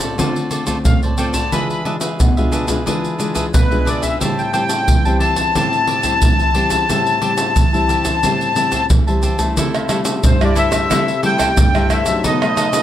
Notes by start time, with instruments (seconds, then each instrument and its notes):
Already playing: nylon-string guitar A2 A3 C4 F4
0.00 cavaquinho A4 C5 D5, pandeiro, shaker, surdo
0.18 nylon-string guitar D3 A3 C4 F4, cavaquinho F4 A4 C5 D5, pandeiro, shaker, surdo
0.36 pandeiro, shaker
0.50 cavaquinho F4 A4 C5 D5, pandeiro, shaker
0.66 nylon-string guitar A3 C4 F4, cavaquinho F4 A4 C5 D5, pandeiro, shaker, surdo
0.85 nylon-string guitar A2, accordion F5, pandeiro, shaker, surdo
1.03 cavaquinho A4 C5 D5, pandeiro, shaker
1.18 nylon-string guitar A3 C4 F4, cavaquinho F4 A4 C5 D5, accordion G5, pandeiro, shaker
1.33 cavaquinho A4 C5 D5, accordion A5, pandeiro, shaker, surdo
1.52 nylon-string guitar E3 G#3 D4 F4, cavaquinho D4 G#4 B4 E5, accordion B5, pandeiro, shaker, surdo
1.70 accordion B5, pandeiro, shaker
1.85 nylon-string guitar G#3 D4 F4, cavaquinho D4 G#4 B4 E5, pandeiro
2.01 cavaquinho G#4 B4 E5, pandeiro, shaker
2.20 nylon-string guitar B2, pandeiro, shaker, surdo
2.37 nylon-string guitar G#3 D4 F4, cavaquinho G#4 B4 E5, pandeiro, shaker, surdo
2.52 cavaquinho D4 G#4 B4 E5, pandeiro, shaker
2.67 nylon-string guitar G#3 D4 F4, cavaquinho G#4 B4 E5, pandeiro, shaker, surdo
2.86 nylon-string guitar E3 G#3 D4 F4, cavaquinho D4 G#4 B4 E5, pandeiro, shaker, surdo
3.05 pandeiro, shaker
3.18 nylon-string guitar G#3 D4 F4, cavaquinho D4 G#4 B4 E5, pandeiro, shaker
3.35 cavaquinho D4 G#4 B4 E5, pandeiro, shaker, surdo
3.54 nylon-string guitar B2, accordion B4, pandeiro, shaker, surdo
3.70 nylon-string guitar G#3 D4 F4, cavaquinho G#4 B4 E5, pandeiro, shaker
3.85 cavaquinho D4 G#4 B4 E5, accordion D5, pandeiro, shaker, surdo
4.02 cavaquinho G#4 B4 E5, accordion E5, pandeiro, shaker, surdo
4.20 nylon-string guitar A2 G3 C4 E4, cavaquinho G4 C5 E5 A5, pandeiro, shaker, surdo
4.38 accordion G5, pandeiro, shaker
4.53 nylon-string guitar G3 C4 E4, cavaquinho G4 C5 E5 A5, accordion G5, pandeiro, shaker
4.69 cavaquinho C5 E5 A5, pandeiro, shaker
4.88 nylon-string guitar E3, pandeiro, shaker, surdo
5.05 nylon-string guitar G3 C4 E4, cavaquinho C5 E5 A5, pandeiro, shaker, surdo
5.19 cavaquinho G4 C5 E5 A5, accordion A5, pandeiro
5.36 cavaquinho C5 E5 A5, pandeiro, shaker, surdo
5.55 nylon-string guitar A2 G3 C4 E4, cavaquinho G4 C5 E5 A5, pandeiro, shaker, surdo
5.73 pandeiro, shaker
5.87 cavaquinho G4 C5 E5 A5, pandeiro
6.03 nylon-string guitar G3 C4 E4, cavaquinho G4 C5 E5 A5, pandeiro, shaker, surdo
6.22 nylon-string guitar E3, pandeiro, shaker, surdo
6.39 cavaquinho C5 E5 A5, pandeiro, shaker
6.54 nylon-string guitar G3 C4 E4, cavaquinho G4 C5 E5 A5, pandeiro
6.70 cavaquinho C5 E5 A5, pandeiro, shaker, surdo
6.89 nylon-string guitar A2 G3 C4 E4, cavaquinho G4 C5 E5 A5, pandeiro, shaker, surdo
7.07 pandeiro, shaker
7.21 nylon-string guitar G3 C4 E4, cavaquinho G4 C5 E5 A5, pandeiro
7.37 cavaquinho C5 E5 A5, pandeiro, shaker
7.56 nylon-string guitar E3, pandeiro, shaker, surdo
7.73 nylon-string guitar G3 C4 E4, cavaquinho C5 E5 A5, pandeiro, shaker, surdo
7.89 cavaquinho G4 C5 E5 A5, pandeiro, shaker
8.04 cavaquinho C5 E5 A5, pandeiro, shaker, surdo
8.23 nylon-string guitar A2 G3 C4 E4, cavaquinho G4 C5 E5 A5, pandeiro, shaker, surdo
8.41 pandeiro, shaker
8.55 nylon-string guitar G3 C4 E4, cavaquinho G4 C5 E5 A5, pandeiro, shaker
8.71 cavaquinho G4 C5 E5 A5, pandeiro, shaker, surdo
8.90 nylon-string guitar E3, pandeiro, shaker, surdo
9.07 nylon-string guitar G3 C4 E4, cavaquinho C5 E5 A5, pandeiro, shaker
9.22 cavaquinho G4 C5 E5 A5, pandeiro, shaker, surdo
9.38 nylon-string guitar G3 A3 E4, cavaquinho C5 E5 A5, pandeiro, shaker, surdo
9.57 nylon-string guitar C3, cavaquinho E4 A4 C5 E5, pandeiro, shaker, surdo
9.74 pandeiro, tamborim, shaker
9.89 nylon-string guitar G3 A3 E4, cavaquinho E4 A4 C5 E5, pandeiro, tamborim, shaker
10.05 cavaquinho A4 C5 E5, pandeiro, shaker
10.24 nylon-string guitar G2, accordion C5, pandeiro, shaker, surdo
10.41 nylon-string guitar G3 A3 E4, cavaquinho A4 C5 E5, accordion D5, pandeiro, tamborim, shaker, surdo
10.55 cavaquinho E4 A4 C5 E5, accordion E5, pandeiro, shaker
10.71 cavaquinho A4 C5 E5, pandeiro, tamborim, shaker, surdo
10.89 nylon-string guitar C3 G3 A3 E4, cavaquinho E4 A4 C5 E5, pandeiro, tamborim, shaker, surdo
11.08 pandeiro, shaker
11.22 nylon-string guitar G3 A3 E4, cavaquinho E4 A4 C5 E5, accordion G5, pandeiro
11.38 cavaquinho E4 A4 C5 E5, pandeiro, tamborim, shaker, surdo
11.57 nylon-string guitar G2, pandeiro, shaker, surdo
11.74 nylon-string guitar G3 A3 E4, cavaquinho A4 C5 E5, pandeiro, tamborim, shaker
11.90 cavaquinho E4 A4 C5 E5, accordion E5, pandeiro, tamborim, shaker
12.06 nylon-string guitar F#3 A3 D#4, cavaquinho A4 C5 E5, pandeiro, shaker, surdo
12.24 nylon-string guitar B2, cavaquinho D#4 A4 B4 D#5, accordion D#5, pandeiro, shaker, surdo
12.42 nylon-string guitar F#3 A3 D#4, pandeiro, tamborim, shaker
12.57 cavaquinho D#4 A4 B4 D#5, pandeiro, tamborim, shaker
12.73 cavaquinho A4 B4 D#5, pandeiro, shaker